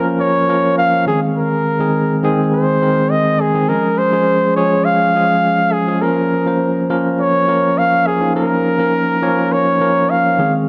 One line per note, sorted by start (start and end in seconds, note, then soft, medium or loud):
0.00 0.48 F3 medium
0.00 0.49 A#3 medium
0.00 0.49 C#4 medium
0.00 1.09 F4 medium
0.00 0.50 A#4 loud
0.20 0.74 C#5 medium
0.48 1.06 F3 medium
0.48 1.06 A#3 medium
0.48 1.06 C#4 medium
0.48 1.07 A#4 medium
0.78 1.05 F5 loud
1.07 1.65 D#3 medium
1.07 1.65 G#3 medium
1.07 1.66 C4 medium
1.07 1.21 G#4 medium
1.07 1.66 G#4 medium
1.36 2.22 A#4 medium
1.80 2.14 D#3 medium
1.80 2.14 G#3 medium
1.80 2.15 C4 medium
1.80 2.15 G#4 medium
2.23 2.69 D#3 medium
2.23 2.70 G#3 medium
2.23 2.70 C4 medium
2.23 2.70 G#4 loud
2.53 3.13 C5 medium
2.82 3.39 D#3 medium
2.82 3.39 G#3 medium
2.82 3.39 C4 medium
2.82 3.40 A#4 medium
3.11 3.42 D#5 medium
3.41 3.70 G#4 medium
3.54 3.66 D#3 medium
3.54 3.66 G#3 medium
3.54 3.66 C4 medium
3.54 3.66 G#4 medium
3.68 4.03 F3 medium
3.68 4.03 G#3 medium
3.68 4.04 C#4 medium
3.68 4.04 G#4 medium
3.68 4.00 A#4 medium
3.98 4.56 C5 loud
4.12 4.47 F3 medium
4.12 4.47 G#3 medium
4.12 4.47 C#4 medium
4.12 4.47 G#4 medium
4.56 5.02 F3 medium
4.56 5.03 G#3 medium
4.56 5.03 C#4 medium
4.56 5.03 G#4 medium
4.56 4.86 C#5 medium
4.85 5.74 F5 loud
5.15 5.72 F3 medium
5.15 5.73 G#3 medium
5.15 5.73 C#4 medium
5.15 5.73 G#4 medium
5.72 6.03 G#4 medium
5.87 5.99 F3 medium
5.87 5.99 G#3 medium
5.87 5.99 C#4 medium
5.87 6.00 G#4 medium
6.02 6.37 F3 medium
6.02 6.37 A#3 medium
6.02 6.37 C#4 medium
6.02 6.92 A#4 medium
6.02 6.37 A#4 medium
6.46 6.80 F3 medium
6.46 6.81 A#3 medium
6.46 6.81 C#4 medium
6.46 6.81 C5 medium
6.90 7.36 F3 medium
6.90 7.36 A#3 medium
6.90 7.36 C#4 medium
6.90 7.36 A#4 loud
7.20 7.80 C#5 medium
7.47 8.05 F3 medium
7.47 8.05 A#3 medium
7.47 8.06 C#4 medium
7.47 8.06 A#4 medium
7.78 8.08 F5 loud
8.07 8.35 G#4 medium
8.20 8.32 F3 medium
8.20 8.32 A#3 medium
8.20 8.32 C#4 medium
8.20 8.33 D#4 medium
8.35 8.70 F3 medium
8.35 8.70 A#3 medium
8.35 8.70 C#4 medium
8.35 9.54 A#4 loud
8.35 8.70 A#4 medium
8.78 9.13 F3 medium
8.78 9.13 A#3 medium
8.78 9.14 C#4 medium
8.78 9.14 A#4 medium
9.22 9.68 F3 medium
9.22 9.68 A#3 medium
9.22 9.69 C#4 medium
9.22 9.69 C#5 loud
9.52 10.12 C#5 medium
9.80 10.38 F3 medium
9.80 10.38 A#3 medium
9.80 10.38 C#4 medium
9.80 10.38 A#4 medium
10.10 10.54 F5 medium
10.38 10.69 D#3 medium
10.38 10.69 G#3 medium
10.38 10.69 C4 medium
10.38 10.69 G#4 medium